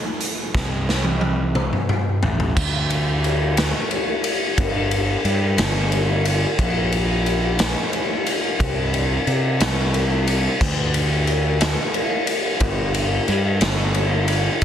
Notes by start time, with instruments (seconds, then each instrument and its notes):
0.21 closed hi-hat
0.54 picked electric bass C2, kick, snare
0.89 snare
1.05 high tom
1.21 high tom
1.55 mid tom
1.73 mid tom
1.89 mid tom
2.23 picked electric bass A1, floor tom
2.40 floor tom
2.56 picked electric bass D2, kick, crash
2.90 ride
3.24 ride
3.57 snare, ride
3.91 ride
4.24 ride
4.58 picked electric bass G1, kick, ride
4.91 ride
5.25 picked electric bass G2, ride
5.58 picked electric bass G1, snare, ride
5.92 ride
6.25 ride
6.59 picked electric bass A#1, kick, ride
6.92 ride
7.26 ride
7.59 snare, ride
7.93 ride
8.26 ride
8.60 picked electric bass C2, kick, ride
8.94 ride
9.27 picked electric bass C3, ride
9.60 picked electric bass C2, snare, ride
9.94 ride
10.27 ride
10.61 picked electric bass D2, kick, crash
10.94 ride
11.27 ride
11.61 snare, ride
11.94 ride
12.27 ride
12.60 picked electric bass G1, kick, ride
12.94 ride
13.28 picked electric bass G2, ride
13.61 picked electric bass G1, snare, ride
13.94 ride
14.28 ride
14.61 ride